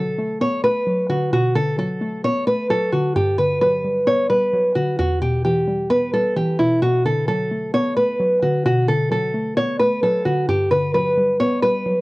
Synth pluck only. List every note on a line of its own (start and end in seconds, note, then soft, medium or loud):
0.00 0.64 B2 loud
0.00 0.87 D3 medium
0.00 0.86 F#3 medium
0.18 0.63 A3 medium
0.41 1.55 B3 loud
0.64 1.78 A3 medium
0.87 1.77 F#3 medium
1.10 1.54 D3 medium
1.33 2.47 B2 loud
1.55 2.70 D3 medium
1.78 2.69 F#3 medium
2.01 2.46 A3 medium
2.24 3.16 B3 loud
2.47 3.16 A3 medium
2.70 3.16 F#3 medium
2.93 3.16 D3 medium
3.16 4.30 G2 loud
3.38 4.53 D3 medium
3.61 4.52 F#3 medium
3.84 4.29 G3 medium
4.07 4.99 B3 loud
4.30 4.99 G3 medium
4.53 4.99 F#3 medium
4.76 4.99 D3 medium
4.99 6.13 E2 medium
5.22 6.36 B2 medium
5.45 6.35 E3 medium
5.68 6.12 G3 medium
5.90 6.82 B3 loud
6.13 6.82 G3 medium
6.36 6.82 E3 medium
6.59 6.81 B2 medium
6.82 7.97 B2 loud
7.05 8.19 D3 medium
7.28 8.18 F#3 medium
7.51 7.95 A3 medium
7.74 8.88 B3 loud
7.96 9.11 A3 medium
8.20 9.10 F#3 medium
8.42 8.87 D3 medium
8.65 9.80 B2 loud
8.88 10.03 D3 medium
9.11 10.02 F#3 medium
9.34 9.79 A3 medium
9.57 10.49 B3 loud
9.80 10.49 A3 medium
10.03 10.49 F#3 medium
10.26 10.49 D3 medium
10.48 11.63 G2 loud
10.71 11.86 D3 medium
10.94 11.85 F#3 medium
11.17 11.62 G3 medium
11.40 12.01 B3 loud
11.63 12.01 G3 medium
11.86 12.01 F#3 medium